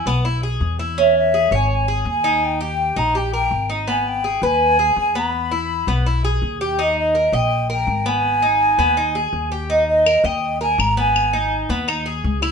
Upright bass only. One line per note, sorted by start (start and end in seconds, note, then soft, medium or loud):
0.06 0.57 B1 medium
0.61 1.46 E2 medium
1.51 2.02 G#1 medium
2.05 2.91 D#2 medium
2.96 3.47 A#1 medium
3.51 4.36 G#1 medium
4.42 4.93 D#2 medium
4.96 5.82 E2 medium
5.87 6.38 B1 medium
6.42 7.27 D#2 medium
7.32 7.83 A#1 medium
7.87 8.73 G#1 medium
8.78 9.29 D#2 medium
9.33 10.18 D#2 medium
10.24 10.75 D#2 medium
10.78 11.64 G#1 medium
11.69 12.20 D#2 medium
12.24 12.52 C#2 medium